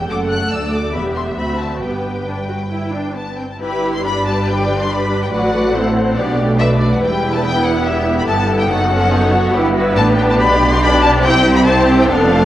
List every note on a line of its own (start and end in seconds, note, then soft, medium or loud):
0.08 0.49 F#1 soft
0.08 0.49 F#2 medium
0.08 0.90 A3 medium
0.08 0.90 A4 soft
0.08 0.51 F#5 medium
0.08 0.18 D6 medium
0.31 0.52 F#6 medium
0.51 0.93 D2 soft
0.51 0.94 D2 soft
0.51 0.94 D5 soft
0.51 0.73 E6 medium
0.73 0.94 D6 medium
0.94 1.38 E1 medium
0.94 1.38 E2 medium
0.94 1.38 B3 soft
0.94 1.38 G4 soft
0.94 1.82 E5 medium
0.94 1.02 B5 medium
1.15 1.23 C6 medium
1.37 1.81 D2 soft
1.37 1.82 C4 soft
1.37 1.81 F#4 soft
1.37 1.59 B5 medium
1.59 1.82 A5 medium
1.81 3.39 G1 soft
1.81 3.39 G2 soft
1.81 2.22 B3 soft
1.81 2.23 G4 soft
1.81 3.34 B4 soft
1.81 3.12 G5 medium
2.27 2.35 D4 medium
2.48 2.56 F#4 medium
2.70 2.92 E4 soft
2.92 3.15 D4 medium
3.14 3.37 B3 soft
3.14 3.36 A5 medium
3.37 3.45 C4 soft
3.37 3.49 G5 soft
3.51 3.55 A5 medium
3.58 5.28 G1 medium
3.58 5.27 G2 medium
3.58 5.27 G3 medium
3.58 3.99 E4 medium
3.58 4.00 G4 medium
3.58 4.00 B4 medium
3.58 3.92 B5 medium
3.93 4.03 C6 medium
4.02 4.43 D4 medium
4.02 4.88 B4 medium
4.02 5.30 D5 medium
4.02 4.24 B5 loud
4.26 4.46 A5 medium
4.45 5.29 D4 medium
4.45 4.79 G5 medium
4.80 4.90 C6 medium
4.89 5.72 B4 medium
4.89 5.21 B5 medium
5.22 5.26 G5 medium
5.31 6.16 A1 medium
5.31 6.15 A2 medium
5.31 5.52 F#3 medium
5.31 5.73 F#4 medium
5.31 5.73 D5 medium
5.31 6.36 F#5 medium
5.52 5.74 A3 medium
5.73 6.17 C4 medium
5.73 6.17 E4 medium
5.73 6.17 A4 medium
5.73 5.94 C5 medium
5.95 6.16 C5 medium
6.17 7.02 B1 medium
6.17 7.02 B2 medium
6.17 6.38 B3 medium
6.17 7.00 D4 medium
6.17 6.60 G4 medium
6.17 6.57 D5 medium
6.38 7.01 A3 medium
6.58 6.99 B4 medium
6.58 7.00 D5 medium
6.58 6.68 E5 loud
6.80 6.91 D5 medium
6.92 6.96 F#5 medium
7.00 8.25 E1 medium
7.00 8.25 E2 medium
7.00 7.43 G3 medium
7.00 8.69 E4 medium
7.00 7.85 B4 medium
7.00 7.32 G5 medium
7.34 7.44 A5 medium
7.44 8.26 B3 medium
7.44 7.65 G5 loud
7.64 7.85 F#5 medium
7.85 8.69 G4 medium
7.85 8.17 E5 medium
8.18 8.22 B5 loud
8.27 8.69 G1 medium
8.27 8.69 G2 medium
8.27 10.76 B3 medium
8.27 9.53 A4 medium
8.27 8.58 A5 medium
8.59 8.69 G5 medium
8.68 9.53 F#1 medium
8.68 9.54 F#2 medium
8.68 8.91 D#4 medium
8.68 9.10 F#4 medium
8.68 9.72 F#5 loud
8.91 9.12 C#4 medium
9.11 9.33 D#4 medium
9.11 9.53 C#5 medium
9.33 9.54 F#4 medium
9.53 9.95 G1 medium
9.53 9.95 G2 medium
9.53 9.95 E4 medium
9.53 9.74 G4 medium
9.53 10.38 B4 medium
9.73 9.95 F#4 medium
9.94 10.38 A1 medium
9.94 10.38 A2 medium
9.94 10.80 D4 medium
9.94 11.63 G4 medium
9.94 10.04 A5 loud
10.17 10.21 G5 medium
10.29 10.33 A5 loud
10.38 11.22 B1 medium
10.38 11.23 B2 medium
10.38 11.23 D5 medium
10.38 10.69 B5 loud
10.72 10.81 C6 loud
10.81 11.23 D4 medium
10.81 11.02 B5 loud
11.02 11.10 A5 loud
11.22 12.07 C2 loud
11.22 12.07 C3 medium
11.22 11.64 C4 medium
11.22 11.64 E4 medium
11.22 11.63 C5 medium
11.22 11.54 G5 loud
11.55 11.59 B5 loud
11.64 12.06 C4 medium
11.64 12.06 E4 medium
11.64 12.06 G4 medium
11.64 12.06 C5 medium
11.64 11.96 A5 loud
11.98 12.02 G5 loud
12.07 12.45 F1 loud
12.07 12.45 F2 loud
12.07 12.29 B3 medium
12.07 12.45 D4 medium
12.07 12.45 A4 medium
12.07 12.45 F5 loud
12.29 12.45 A3 loud